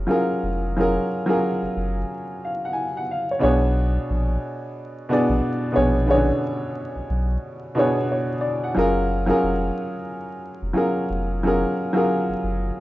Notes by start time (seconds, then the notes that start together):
Already playing: F#3 C#4 F4 G#4 A#4
0.07 F#3 C#4 F4 G#4 A#4
0.43 F1
0.77 F#3 C#4 F4 G#4
0.81 A#4
1.26 F#3 C#4 F4 G#4
1.30 A#4
1.62 F#1
1.77 F#1
2.45 F5
2.65 F#5
2.73 G#5
2.97 F#5
3.11 F5
3.31 C#5
3.39 B2 B3 D4 G#4
3.43 B1 C#5
4.10 A#1
5.09 B2 B3 D4 G#4
5.13 D5
5.29 A#1
5.72 B2 B3 D4 G#4
5.76 A#1 C#5
6.06 D3 B3 C#4 G#4
6.10 C#5
6.15 D4
6.96 B1
7.10 B1
7.75 B2 B3 D4 G#4
7.79 C#5
8.12 C#5
8.41 D5
8.64 F#5
8.75 F#1 F#3 C#4 F4 G#4
8.79 A#4
9.26 F#3 C#4 F4 G#4
9.30 A#4
9.43 F1
10.62 F1
10.73 F#3 C#4 F4 G#4
10.77 A#4
11.10 F1
11.43 F#3 C#4 F4 G#4
11.47 A#4
11.93 F#3 C#4 F4 G#4
11.97 A#4
12.29 F#1
12.44 F#1